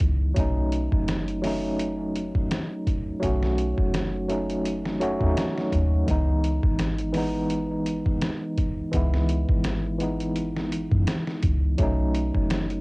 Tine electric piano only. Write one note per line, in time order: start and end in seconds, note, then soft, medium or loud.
0.00 0.32 E3 medium
0.00 0.33 G#3 medium
0.00 0.34 B3 medium
0.00 0.35 D#4 medium
0.34 1.39 F#3 medium
0.34 1.40 A3 medium
0.34 1.41 C#4 medium
0.40 1.42 D#4 medium
1.42 3.17 F#3 medium
1.42 3.18 A3 medium
1.42 3.19 C#4 medium
1.47 3.20 D#4 medium
3.20 4.24 F#3 medium
3.20 4.25 A3 medium
3.20 4.26 C#4 medium
3.25 4.27 F#4 medium
4.28 4.97 F#3 medium
4.28 4.98 A3 medium
4.28 4.98 C#4 medium
4.28 4.99 D#4 medium
5.00 5.15 F#3 medium
5.00 5.16 A3 medium
5.00 5.16 C#4 medium
5.00 5.17 F#4 medium
5.19 6.03 F#3 medium
5.19 6.04 A3 medium
5.19 6.05 C#4 medium
5.24 6.06 D#4 medium
6.06 7.10 E3 medium
6.06 7.11 G#3 medium
6.06 7.12 B3 medium
6.11 7.13 D#4 medium
7.13 8.89 E3 medium
7.13 8.90 G#3 medium
7.13 8.91 B3 medium
7.18 8.91 D#4 medium
8.91 9.96 E3 medium
8.91 9.97 G#3 medium
8.91 9.98 B3 medium
8.96 9.98 E4 medium
9.98 11.74 E3 medium
9.98 11.75 G#3 medium
9.98 11.76 B3 medium
10.03 11.77 D#4 medium
11.78 12.81 F#3 medium
11.78 12.81 A3 medium
11.78 12.81 C#4 medium
11.83 12.81 D#4 medium